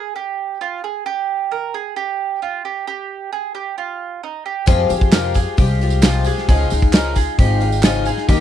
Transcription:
Already playing: mandolin G#4
0.16 mandolin G4
0.61 mandolin F4
0.84 mandolin G#4
1.06 mandolin G4
1.51 mandolin A#4
1.74 mandolin G#4
1.96 mandolin G4
2.42 mandolin F4
2.65 mandolin G4
2.87 mandolin G4
3.32 mandolin G#4
3.55 mandolin G4
3.78 mandolin F4
4.23 mandolin D#4
4.46 mandolin G4
4.66 twelve-string acoustic guitar F2 C3 F3 G#3 F4 G4, upright bass F2, mandolin G#4, kick, open hi-hat
4.89 upright bass F2, twelve-string acoustic guitar F3 G#3 F4 G4, open hi-hat, tambourine
5.01 kick
5.11 twelve-string acoustic guitar F2 C3 F3 G#3 F4 G4, mandolin A#4, snare, clap, open hi-hat, tambourine
5.24 tambourine
5.34 twelve-string acoustic guitar F3 G#3 F4 G4, mandolin G#4, kick, open hi-hat, tambourine
5.57 upright bass C2, twelve-string acoustic guitar F3 G#3 F4 G4, mandolin G4, kick, open hi-hat, tambourine
5.81 twelve-string acoustic guitar F3 G#3 F4 G4, open hi-hat
5.90 tambourine
6.02 twelve-string acoustic guitar F2 C3 F3 G#3 F4 G4, mandolin F4, snare, clap, open hi-hat, tambourine
6.14 tambourine
6.24 twelve-string acoustic guitar F3 G#3 F4 G4, mandolin G#4, open hi-hat, tambourine
6.36 snare, tambourine
6.48 upright bass C#2, twelve-string acoustic guitar C#3 F3 G#3 D#4 F4, mandolin G#4, kick, open hi-hat
6.70 upright bass C#2, twelve-string acoustic guitar G#3 D#4 F4, open hi-hat, tambourine
6.82 kick
6.93 twelve-string acoustic guitar C#3 F3 G#3 D#4 F4, mandolin A#4, snare, clap, open hi-hat, tambourine
7.04 tambourine
7.16 twelve-string acoustic guitar G#3 D#4 F4, mandolin G#4, kick, open hi-hat, tambourine
7.38 upright bass G#1, twelve-string acoustic guitar F3 G#3 D#4 F4, mandolin G4, kick, open hi-hat, tambourine
7.61 twelve-string acoustic guitar G#3 D#4 F4, open hi-hat
7.72 tambourine
7.83 twelve-string acoustic guitar C#3 F3 G#3 D#4 F4, mandolin F4, snare, clap, open hi-hat, tambourine
7.95 tambourine
8.05 twelve-string acoustic guitar G#3 D#4 F4, mandolin G#4, open hi-hat, tambourine
8.17 snare
8.28 upright bass D#2, twelve-string acoustic guitar D#3 A#3 D#4 G4, mandolin G4, kick, open hi-hat

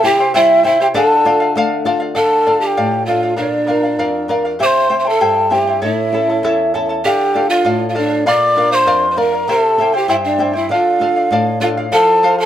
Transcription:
Already playing: nylon-string guitar C3
0.03 nylon-string guitar E4, charango E4 C5 E5 G5, pan flute G4, quena G5
0.19 charango E4 C5 G5
0.34 nylon-string guitar G3, charango E4 G4 C5 E5 G5, pan flute E4, quena E5
0.64 charango E4 C5 E5 G5, nylon-string guitar E4, pan flute E4, quena E5
0.80 charango E4 C5 G5, pan flute G4, quena G5
0.94 nylon-string guitar D3, charango A4 D5 F5, pan flute A4, quena A5
1.25 nylon-string guitar F4, charango A4 D5 F5
1.40 charango D5 F5
1.56 nylon-string guitar A3, charango A4 D5 F5
1.85 nylon-string guitar F4, charango A4 D5 F5
2.00 charango D5 F5
2.15 nylon-string guitar D3, charango A4 D5 F5, pan flute A4, quena A5
2.47 nylon-string guitar D4 F4 A4, charango A4 D5 F5
2.61 pan flute G4, charango D5 F5, quena A5
2.67 quena G5
2.77 nylon-string guitar A2, charango A4 D5 F5
3.06 nylon-string guitar D4 F4 A4, pan flute F4, charango A4 D5 F5, quena F5
3.23 charango D5 F5
3.36 nylon-string guitar A#2, pan flute D4, charango A#4 D5 F5, quena D5
3.67 nylon-string guitar D4 F4 A#4, charango A#4 D5 F5
3.83 charango D5 F5
3.99 nylon-string guitar F2, charango A#4 D5 F5
4.28 nylon-string guitar D4 F4 A#4, charango A#4 D5 F5
4.45 charango D5 F5
4.59 nylon-string guitar C3, charango E4 G4 C5 E5 G5, quena D6
4.63 pan flute C5, quena C6
4.89 nylon-string guitar C4 E4 G4, charango E4 C5 E5 G5
5.00 pan flute C5, quena C6
5.05 charango E4 C5 G5, quena A5
5.09 pan flute A4
5.20 nylon-string guitar G2, charango E4 G4 C5 E5 G5
5.50 nylon-string guitar C4 E4 G4, charango E4 C5 E5 G5, pan flute G4, quena G5
5.67 charango E4 C5 G5
5.82 nylon-string guitar A2, charango E4 A4 C#5 E5 A5, pan flute E4, quena E5
6.12 nylon-string guitar C#4 E4 A4, charango E4 A4 E5 A5
6.30 charango E4 A4 A5
6.43 nylon-string guitar E2, charango E4 A4 C#5 E5 A5
6.74 nylon-string guitar C#4 E4 A4, charango E4 A4 E5 A5
6.89 charango E4 A4 A5
7.04 nylon-string guitar D3, pan flute G4, charango A4 D5 F5, quena G5
7.34 nylon-string guitar D4 F4 A4, charango A4 D5 F5
7.50 pan flute F4, charango D5 F5, quena F5
7.65 nylon-string guitar A2, charango A4 D5 F5
7.88 pan flute F4, quena F5
7.94 nylon-string guitar D4 F4 A4, pan flute D4, charango A4 D5 F5, quena D5
8.10 charango D5 F5
8.26 nylon-string guitar A#2, charango A#4 D5 F5, pan flute D5, quena D6
8.56 nylon-string guitar D4 F4 A#4, charango A#4 D5 F5
8.72 pan flute C5, charango D5 F5, quena C6
8.86 nylon-string guitar F2, charango A#4 D5 F5
9.11 pan flute C5, quena C6
9.17 nylon-string guitar D4 F4 A#4, charango A#4 D5 F5, pan flute A#4, quena A#5
9.33 charango D5 F5
9.48 nylon-string guitar C3, charango E4 G4 C5 E5 G5, pan flute A4, quena A#5
9.59 quena A5
9.78 nylon-string guitar C4 E4 G4, charango E4 C5 E5 G5
9.93 charango E4 C5 G5, pan flute G4, quena G5
10.08 nylon-string guitar G2, charango E4 G4 C5 E5 G5, pan flute E4, quena E5
10.25 pan flute D4, quena D5
10.38 nylon-string guitar C4 E4 G4, charango E4 C5 E5 G5
10.53 charango E4 C5 G5, pan flute E4
10.58 quena E5
10.69 nylon-string guitar D3, charango A4 D5 F5, quena F5
10.73 pan flute F4
11.00 nylon-string guitar D4 F4 A4, charango A4 D5 F5
11.16 charango D5 F5
11.31 nylon-string guitar A2, charango A4 D5 F5
11.60 nylon-string guitar D4 F4 A4, pan flute F4, charango A4 D5 F5, quena F5
11.77 charango D5 F5
11.92 nylon-string guitar F3, charango A4 C5 F5, pan flute A4, quena A5
12.23 charango A4 C5 F5
12.38 pan flute A4, charango C5 F5, quena A5

